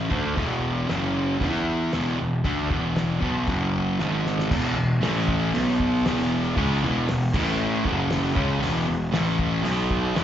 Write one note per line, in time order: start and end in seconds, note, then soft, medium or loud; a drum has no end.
0.08 0.35 D2 medium
0.08 0.35 D3 medium
0.08 0.36 A3 medium
0.08 0.36 D4 medium
0.08 kick loud
0.35 0.86 E1 medium
0.35 0.87 E2 medium
0.35 0.87 B2 loud
0.35 0.88 E3 loud
0.35 kick medium
0.35 open hi-hat soft
0.87 1.37 F#1 medium
0.87 1.39 F#2 medium
0.87 1.41 C#3 loud
0.87 1.42 F#3 loud
0.87 snare loud
0.87 open hi-hat soft
1.41 1.89 E2 loud
1.41 1.92 E3 medium
1.41 1.93 B3 loud
1.41 1.93 E4 loud
1.41 kick loud
1.41 open hi-hat medium
1.93 2.18 E1 medium
1.93 2.17 E2 medium
1.93 2.18 B2 loud
1.93 2.19 E3 loud
1.93 snare loud
1.93 open hi-hat medium
2.18 2.43 E1 medium
2.18 2.39 E2 medium
2.18 2.39 B2 medium
2.44 2.69 D2 medium
2.44 2.69 D3 medium
2.44 2.70 A3 medium
2.44 2.70 D4 loud
2.44 kick loud
2.44 open hi-hat medium
2.69 3.19 E1 medium
2.69 3.21 E2 medium
2.69 3.19 B2 medium
2.69 3.20 E3 loud
2.69 kick loud
2.96 snare loud
2.96 open hi-hat medium
3.20 3.46 B1 medium
3.20 3.46 B2 medium
3.20 3.46 F#3 medium
3.20 3.47 B3 loud
3.20 kick loud
3.47 3.96 F#1 medium
3.47 3.98 F#2 medium
3.47 3.99 C#3 loud
3.47 3.99 F#3 medium
3.47 kick loud
3.47 open hi-hat medium
3.99 4.48 G#1 medium
3.99 4.50 G#2 medium
3.99 4.51 D#3 medium
3.99 4.51 G#3 loud
3.99 snare medium
4.26 snare medium
4.39 snare medium
4.51 4.75 E1 medium
4.51 4.76 E2 loud
4.51 4.76 B2 loud
4.51 4.77 E3 loud
4.51 kick loud
4.51 crash loud
4.76 5.01 E1 medium
4.76 4.98 E2 medium
4.76 4.98 B2 medium
5.01 5.50 A1 medium
5.01 5.53 A2 medium
5.01 5.54 E3 loud
5.01 5.54 A3 loud
5.01 snare loud
5.01 open hi-hat medium
5.28 kick medium
5.54 6.02 B1 loud
5.54 6.05 B2 medium
5.54 6.05 F#3 loud
5.54 6.05 B3 loud
5.54 open hi-hat medium
5.80 kick medium
6.05 6.53 E1 medium
6.05 6.56 E2 loud
6.05 6.56 B2 loud
6.05 6.57 E3 loud
6.05 snare loud
6.05 open hi-hat medium
6.19 snare soft
6.56 6.81 C#2 loud
6.56 6.82 C#3 medium
6.56 6.82 G#3 loud
6.56 6.82 C#4 loud
6.56 kick loud
6.56 open hi-hat medium
6.82 7.07 E1 loud
6.82 7.07 E2 medium
6.82 7.08 B2 medium
6.82 7.08 E3 loud
7.09 7.33 E1 medium
7.09 7.29 E2 medium
7.09 7.29 B2 medium
7.09 snare loud
7.09 open hi-hat medium
7.33 7.82 A1 loud
7.33 7.84 A2 medium
7.33 7.85 E3 loud
7.33 7.85 A3 loud
7.33 kick loud
7.33 crash loud
7.84 8.33 F#1 loud
7.84 8.35 F#2 medium
7.84 8.33 C#3 loud
7.84 8.35 F#3 loud
7.84 kick medium
8.11 snare loud
8.11 open hi-hat medium
8.35 8.61 C#2 medium
8.35 8.60 C#3 medium
8.35 8.61 G#3 loud
8.35 8.62 C#4 loud
8.35 kick loud
8.60 8.86 E1 loud
8.60 8.85 E2 loud
8.60 8.86 B2 loud
8.60 8.87 E3 loud
8.60 open hi-hat medium
8.87 9.12 E1 medium
8.87 9.08 E2 medium
8.87 9.08 B2 medium
9.12 9.62 A1 loud
9.12 9.62 A2 medium
9.12 9.64 E3 loud
9.12 9.64 A3 loud
9.12 snare loud
9.12 open hi-hat medium
9.39 kick medium
9.63 10.13 B1 loud
9.63 10.14 B2 medium
9.63 10.16 F#3 loud
9.63 10.16 B3 loud
9.63 open hi-hat medium
9.91 kick medium
10.15 10.24 E1 medium
10.15 10.24 E2 loud
10.15 10.24 B2 loud
10.15 10.24 E3 loud
10.15 snare loud
10.15 open hi-hat medium